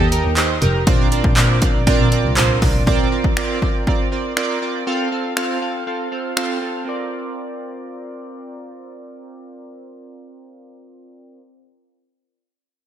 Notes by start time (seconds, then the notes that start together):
0.12 D#4 G4 A#4, closed hi-hat
0.24 D#2
0.37 D#4 G4 C5, clap, closed hi-hat
0.62 F1 D#4 G4 A#4, closed hi-hat
0.87 A#1 C4 D4 F4 A#4 D5, kick, closed hi-hat
1.11 C4 D4 F4 A#4 D5, closed hi-hat
1.24 A#1, kick
1.37 A#2 C4 D4 F4 A#4 D5, clap, closed hi-hat
1.61 C4 D4 F4 A#4 D5, kick, closed hi-hat
1.74 A#1
1.87 C4 D4 F4 A#4 D5, kick, closed hi-hat
1.99 A#1
2.12 C4 D4 F4 A#4 D5, closed hi-hat
2.25 C2
2.37 A#1 C4 D4 F4 A#4 C5, clap, closed hi-hat
2.62 C2 C4 D4 F4 A#4 D5, kick, open hi-hat
2.74 A#1
2.86 C4 F4 A#4 D5, kick
3.12 C4 F4 A#4 D5
3.24 kick
3.37 C4 F4 A#4 D5, finger snap
3.62 F4 A#4 D5, kick
3.87 C4 F4 A#4 D5, kick
4.12 C4 F4 A#4 D5
4.37 C4 F4 A#4 D5, finger snap
4.62 C4 F4 A#4 D5
4.87 C4 F4 A4 F5
5.12 C4 F4 A4 F5
5.37 C4 F4 A4 F5, finger snap
5.62 C4 F4 A4 F5
5.87 C4 F4 A4 F5
6.12 C4 F4 A4 F5
6.37 C4 F4 A4 F5, finger snap
6.62 C4 F4 A4 F5
6.85 C4 F4 A#4 D5